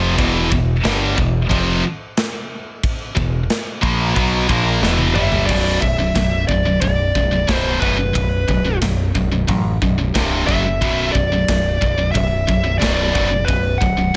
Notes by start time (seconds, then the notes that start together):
Already playing: F1 F2 C3 F3
0.17 E1 E2 B2 E3, kick, crash
0.51 E1 E2 B2, kick
0.84 G1 G2 D3 G3, snare, crash
1.16 E1 E2 B2, kick
1.49 F1 F2 C3 F3, kick, crash
2.17 snare, crash
2.83 kick, crash
3.15 E1 E2 B2, kick
3.50 snare, crash
3.81 A#1 A#2 F3 A#3, kick
4.14 B1 B2 F#3 B3, kick, crash
4.48 A#1 A#2 F3 A#3, kick
4.82 E1 E2 B2 E3, snare
4.99 high tom
5.15 G1 G2 D3 G3 E5, mid tom
5.32 floor tom
5.46 B0 B1 F#2 B2 D5, kick, crash
5.81 B0 B1 F#2 E5, kick
5.99 B1 F#2
6.15 B0 B1 F#2, kick, snare, ride bell
6.47 B0 B1 F#2 D5, kick
6.65 B1 F#2
6.81 B0 B1 F#2 D5, kick, ride bell
7.15 B0 B1 F#2, kick
7.31 B1 F#2
7.47 B0 B1 F#2 B2, kick, snare, ride bell
7.54 C5
7.80 F#1 B1 F#2 B2 B4, kick
7.98 B1 F#2
8.13 B0 B1 F#2, kick, ride bell
8.48 B0 B1 F#2, kick
8.65 B1 F#2
8.81 B0 B1 F#2, kick, snare, ride bell
9.15 B0 B1 F#2, kick
9.32 B1 F#2
9.47 A1 B1 F#2, kick, ride bell
9.82 B0 B1 F#2, kick
9.98 B1 F#2
10.14 C1 C2 G2 C3, kick, snare, ride bell
10.47 F#1 F#2 C#3 F#3 E5, kick
10.66 F#2 C#3
10.81 B0 B1 F#2 B2, kick, ride bell
11.12 B0 B1 F#2 D5, kick
11.32 B1 F#2
11.48 B0 B1 F#2, kick, snare, ride bell
11.81 B0 B1 F#2, kick
11.98 B1 F#2
12.11 B1 F#2 E5, kick, ride bell
12.16 B0
12.47 B0 B1 F#2, kick
12.64 B1 F#2
12.78 B1 F#2 B2 D5, kick, ride bell
12.82 B0, snare
13.13 F#1 B1 F#2 B2, kick
13.30 B1 F#2
13.45 B0 B1 F#2 B4, kick, ride bell
13.78 B0 B1 F#2 F#5, kick
13.97 B1 F#2